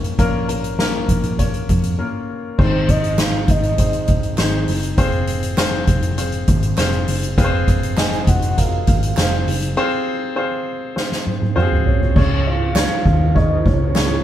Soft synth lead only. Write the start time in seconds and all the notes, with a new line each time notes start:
2.60 C5
2.90 D#5
3.20 F5
3.50 D#5
7.98 G#5
8.28 F#5
8.58 F5
9.17 F5
11.87 C#5
12.47 F5
13.36 D#5
13.66 C#5